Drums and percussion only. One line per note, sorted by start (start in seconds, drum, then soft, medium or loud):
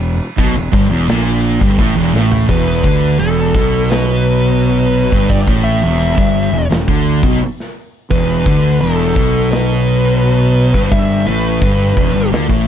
0.38 kick loud
0.38 crash medium
0.73 kick loud
1.08 snare loud
1.08 crash medium
1.61 kick loud
1.79 kick loud
1.79 crash medium
2.16 snare medium
2.32 floor tom medium
2.49 kick loud
2.49 open hi-hat medium
2.84 kick loud
3.20 open hi-hat medium
3.55 kick loud
3.90 snare loud
3.90 open hi-hat medium
4.60 open hi-hat medium
5.12 kick loud
5.30 kick loud
5.30 open hi-hat medium
5.47 kick loud
6.00 open hi-hat medium
6.18 kick loud
6.70 snare loud
6.70 open hi-hat medium
6.88 kick loud
7.23 kick loud
7.41 open hi-hat medium
7.60 snare soft
8.11 kick loud
8.11 open hi-hat medium
8.46 kick loud
8.81 open hi-hat medium
9.16 kick loud
9.51 snare loud
9.51 open hi-hat medium
10.22 open hi-hat medium
10.74 kick loud
10.92 kick loud
10.92 open hi-hat medium
11.62 kick loud
11.62 open hi-hat medium
11.97 kick loud
12.32 snare loud
12.32 open hi-hat medium
12.50 kick loud